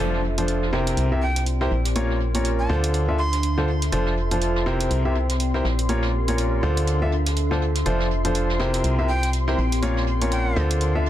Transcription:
Already playing: ambient pad D4 A4 E5
0.00 fm bass F1, grand piano F3 D4 F4 A4 C5, ambient pad F4, analog synth pad C6
0.14 snare
0.24 closed hi-hat
0.38 grand piano F3 D4 F4 A4 C5, closed hi-hat
0.42 ambient pad C5
0.48 closed hi-hat
0.63 snare
0.73 grand piano C3 E4 G4 A#4 C5, snare, closed hi-hat
0.87 snare, closed hi-hat
0.97 fm bass C2, ambient pad C4, closed hi-hat
1.11 grand piano C3 E4 G4 A#4 E5, closed hi-hat
1.22 flute G5, closed hi-hat
1.36 snare, closed hi-hat
1.46 closed hi-hat
1.61 grand piano E4 G4 A#4 C5, snare
1.71 fm bass A#1, ambient pad A#4, closed hi-hat
1.85 snare, closed hi-hat
1.95 grand piano A#2 C#4 F4 A#4 C#5, closed hi-hat
2.10 snare
2.16 ambient pad C6, closed hi-hat
2.35 grand piano A#2 C#4 F4 A#4 C#5, closed hi-hat
2.45 closed hi-hat
2.59 flute A5
2.69 fm bass D2, grand piano D3 D4 F4 A4 C5, ambient pad D4, closed hi-hat
2.84 closed hi-hat
2.93 closed hi-hat
3.08 grand piano D3 D4 F4 A4 E5
3.19 flute C6, closed hi-hat
3.26 ambient pad A4 E5
3.33 snare, closed hi-hat
3.43 closed hi-hat
3.58 grand piano D3 D4 F4 A4 C5, snare
3.67 closed hi-hat
3.82 snare, closed hi-hat
3.92 fm bass F1, grand piano F3 D4 F4 A4 C5, ambient pad F4, closed hi-hat
4.06 snare
4.15 ambient pad C5, closed hi-hat
4.31 grand piano F3 D4 F4 A4 C5, closed hi-hat
4.41 closed hi-hat
4.56 snare
4.66 grand piano C3 E4 G4 A#4 C5, snare, closed hi-hat
4.81 snare, closed hi-hat
4.91 fm bass C2, ambient pad C4, closed hi-hat
5.05 grand piano C3 E4 G4 A#4 E5, closed hi-hat
5.10 ambient pad G4
5.15 closed hi-hat
5.30 snare, closed hi-hat
5.40 closed hi-hat
5.54 grand piano E4 G4 A#4 C5, snare
5.65 fm bass A#1, ambient pad A#4, snare, closed hi-hat
5.79 closed hi-hat
5.89 grand piano A#2 C#4 F4 A#4 C#5, closed hi-hat
5.95 ambient pad C6
6.03 snare, closed hi-hat
6.28 grand piano A#2 C#4 F4 A#4 C#5, closed hi-hat
6.38 closed hi-hat
6.63 fm bass D2, grand piano D3 D4 F4 A4 C5, ambient pad D4, closed hi-hat
6.77 closed hi-hat
6.85 ambient pad A4, closed hi-hat
7.02 grand piano D3 D4 F4 A4 E5
7.12 closed hi-hat
7.19 ambient pad E5
7.26 snare, closed hi-hat
7.37 closed hi-hat
7.51 grand piano D3 D4 F4 A4 C5, snare
7.62 closed hi-hat
7.75 snare, closed hi-hat
7.86 fm bass F1, grand piano F3 D4 F4 A4 C5, ambient pad F4, analog synth pad C6, closed hi-hat
8.00 snare
8.06 ambient pad C5
8.11 closed hi-hat
8.25 grand piano F3 D4 F4 A4 C5, closed hi-hat
8.35 closed hi-hat
8.50 snare
8.59 grand piano C3 E4 G4 A#4 C5, snare, closed hi-hat
8.74 snare, closed hi-hat
8.84 fm bass C2, ambient pad C4, closed hi-hat
8.99 grand piano C3 E4 G4 A#4 E5, closed hi-hat
9.09 flute G5, closed hi-hat
9.23 snare, closed hi-hat
9.33 closed hi-hat
9.47 grand piano E4 G4 A#4 C5, snare
9.58 fm bass A#1, ambient pad A#4, closed hi-hat
9.72 snare, closed hi-hat
9.83 grand piano A#2 C#4 F4 A#4 C#5, closed hi-hat
9.97 snare
10.03 ambient pad C6, closed hi-hat
10.22 grand piano A#2 C#4 F4 A#4 C#5, closed hi-hat
10.32 flute G5, closed hi-hat
10.56 fm bass D2, grand piano D3 D4 F4 A4 C5, ambient pad D4, closed hi-hat
10.71 closed hi-hat
10.80 ambient pad A4, closed hi-hat
10.91 ambient pad E5
10.95 grand piano D3 D4 F4 A4 E5
11.06 closed hi-hat

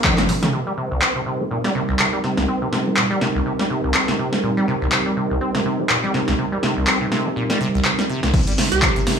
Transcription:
Already playing: analog synth pad G#3 C#4 F4 A#4
0.04 acid bass D#3, kick, clap, mid tom
0.18 acid bass C#3, snare, clap, closed hi-hat, mid tom
0.29 acid bass A#2, open hi-hat
0.42 acid bass C#3, snare, closed hi-hat, mid tom
0.53 acid bass C3, analog synth pad G3 C4 D#4 A#4
0.67 acid bass G3
0.78 acid bass C3
0.91 acid bass C2
1.02 acid bass C4, clap
1.15 acid bass C3
1.26 acid bass C3
1.40 acid bass D#4
1.51 acid bass A#2
1.64 acid bass G3, snare
1.75 acid bass C3
1.89 acid bass C2
1.99 acid bass C3, clap
2.13 acid bass G3
2.24 acid bass C3, snare
2.37 acid bass C2, snare
2.48 acid bass C4
2.62 acid bass C3
2.73 acid bass C3, snare
2.86 acid bass D#4
2.97 acid bass A#2, clap
3.11 acid bass G3
3.21 acid bass C3, snare
3.35 acid bass C2
3.46 acid bass C3
3.59 acid bass G3, snare
3.70 acid bass C3
3.84 acid bass C2
3.94 acid bass C4, clap
4.08 acid bass C3, snare
4.19 acid bass C3
4.33 acid bass D#4, snare
4.43 acid bass A#2
4.57 acid bass G3
4.68 acid bass C3
4.81 acid bass C2
4.92 acid bass C3, clap
5.06 acid bass G3
5.17 acid bass C3
5.30 acid bass C2
5.41 acid bass C4
5.55 acid bass C3, snare
5.65 acid bass C3
5.79 acid bass D#4
5.89 acid bass A#2, clap
6.04 acid bass G3
6.14 acid bass C3, snare
6.28 acid bass C2, snare
6.39 acid bass C3
6.52 acid bass G3
6.63 acid bass C3, snare
6.77 acid bass C2
6.87 acid bass C4, clap
7.01 acid bass C3
7.12 acid bass C3, snare
7.25 acid bass D#4
7.36 acid bass A#2
7.50 acid bass G3, snare
7.61 acid bass C3
7.74 acid bass C2
7.85 acid bass C3, clap
7.99 acid bass G3, snare
8.09 acid bass C3
8.23 acid bass C2, snare
8.34 acid bass C3, analog synth pad G3 C4 D#4 A#4, kick, crash
8.47 acid bass G3, closed hi-hat
8.58 acid bass C3, snare, open hi-hat
8.72 acid bass C2, synth pluck G4, closed hi-hat
8.82 acid bass C4, kick, clap
8.96 acid bass C3, closed hi-hat
9.07 acid bass C3, snare, open hi-hat

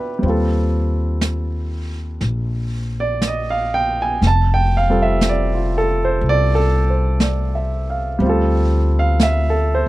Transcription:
Already playing: grand piano F#3 B3 D4 E4 F#4 G4 A4 B4 D5 E5 F#5
0.19 grand piano G3 C4, brush sweep
0.23 upright bass D#2, grand piano F4
0.29 grand piano A4
1.21 brush sweep, snare, hi-hat pedal
2.21 upright bass A#1, brush sweep, snare
3.00 grand piano D5
3.22 brush sweep, snare, hi-hat pedal
3.28 grand piano D#5
3.50 grand piano F5
3.74 grand piano G5
4.02 grand piano G#5
4.22 upright bass F1, brush sweep, snare
4.27 grand piano A5
4.54 grand piano G5
4.77 grand piano F5
4.90 grand piano G3 C4 F4 A4
5.03 grand piano E5
5.21 brush sweep, snare, hi-hat pedal
5.29 grand piano D5
5.54 grand piano F4
5.78 grand piano A4
6.05 grand piano C5
6.21 upright bass C2, brush sweep
6.29 grand piano D5
6.55 grand piano A4
6.90 grand piano C5
7.20 grand piano D5, brush sweep, snare, hi-hat pedal
7.55 grand piano E5
7.90 grand piano F5
8.19 upright bass D2, grand piano G3 C4, brush sweep
8.26 grand piano F4 A4
8.99 grand piano F5
9.20 grand piano E5, brush sweep, snare, hi-hat pedal
9.50 grand piano A4
9.75 grand piano C5

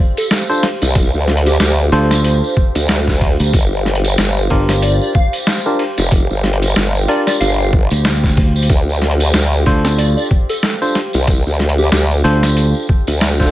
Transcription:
Already playing: ambient pad G4 C5 F5
0.17 digital synth lead A4, closed hi-hat, tambourine
0.31 digital synth lead A4, snare, closed hi-hat, tambourine
0.49 tine electric piano D4 F4 A4 C5, tambourine
0.63 snare, open hi-hat
0.82 wobble bass C2, closed hi-hat, tambourine
0.95 kick, closed hi-hat, tambourine
1.14 wobble bass D2, tambourine
1.28 snare, closed hi-hat
1.37 closed hi-hat
1.46 digital synth lead G4, closed hi-hat, tambourine
1.60 wobble bass D2, digital synth lead G4, snare, closed hi-hat, tambourine
1.79 tambourine
1.92 fingered electric bass D2, tine electric piano D4 F4 A4 C5, open hi-hat
2.11 snare, closed hi-hat, tambourine
2.24 closed hi-hat, tambourine
2.44 tambourine
2.57 kick
2.75 wobble bass D2, closed hi-hat, tambourine
2.89 snare, closed hi-hat, tambourine
3.08 kick, snare, tambourine
3.21 kick, open hi-hat
3.40 fingered electric bass D2, closed hi-hat, tambourine
3.53 wobble bass G1, kick, closed hi-hat, tambourine
3.72 tambourine
3.86 snare, closed hi-hat
3.95 closed hi-hat
4.04 closed hi-hat, tambourine
4.18 wobble bass G1, snare, closed hi-hat, tambourine
4.37 tambourine
4.50 fingered electric bass G1, tine electric piano D4 F4 G4 A#4, kick, open hi-hat
4.69 snare, closed hi-hat, tambourine
4.82 digital synth lead D5, closed hi-hat, tambourine
5.01 digital synth lead D5, tambourine
5.15 digital synth lead F5, kick
5.33 closed hi-hat, tambourine
5.47 snare, closed hi-hat, tambourine
5.65 tine electric piano D4 F4 G4 A#4, tambourine
5.79 open hi-hat
5.98 wobble bass F1, closed hi-hat, tambourine
6.11 kick, closed hi-hat, tambourine
6.30 wobble bass G1, tambourine
6.44 snare, closed hi-hat
6.53 closed hi-hat
6.62 closed hi-hat, tambourine
6.75 wobble bass G1, snare, closed hi-hat, tambourine
6.95 tambourine
7.08 tine electric piano D4 F4 G4 A#4, digital synth lead D5, open hi-hat
7.27 digital synth lead D5, snare, closed hi-hat, tambourine
7.40 wobble bass G1, digital synth lead F5, closed hi-hat, tambourine
7.59 digital synth lead F5, tambourine
7.73 kick
7.90 fingered electric bass D2, closed hi-hat, tambourine
8.05 snare, closed hi-hat, tambourine
8.23 kick, snare, tambourine
8.37 kick, open hi-hat
8.56 tambourine
8.63 closed hi-hat
8.69 wobble bass D2, kick, closed hi-hat, tambourine
8.89 tambourine
9.02 snare, closed hi-hat
9.11 closed hi-hat
9.20 closed hi-hat, tambourine
9.34 wobble bass D2, snare, closed hi-hat, tambourine
9.53 tambourine
9.66 fingered electric bass D2, tine electric piano D4 F4 A4 C5, kick, open hi-hat
9.85 snare, closed hi-hat, tambourine
9.98 digital synth lead D5, closed hi-hat, tambourine
10.17 digital synth lead D5, tambourine
10.31 kick
10.49 digital synth lead A4, closed hi-hat, tambourine
10.63 digital synth lead A4, snare, closed hi-hat, tambourine
10.82 tine electric piano D4 F4 A4 C5, tambourine
10.95 snare, open hi-hat
11.13 wobble bass C2, closed hi-hat, tambourine
11.27 kick, closed hi-hat, tambourine
11.46 wobble bass D2, tambourine
11.60 snare, closed hi-hat
11.69 closed hi-hat
11.78 digital synth lead G4, tambourine
11.92 wobble bass D2, digital synth lead G4, snare, closed hi-hat, tambourine
12.11 tambourine
12.24 fingered electric bass D2, tine electric piano D4 F4 A4 C5, open hi-hat
12.43 snare, closed hi-hat, tambourine
12.57 closed hi-hat, tambourine
12.75 tambourine
12.89 kick
13.07 wobble bass D2, closed hi-hat, tambourine
13.21 snare, closed hi-hat, tambourine
13.40 tine electric piano D4 F4 A4 C5, kick, snare, tambourine

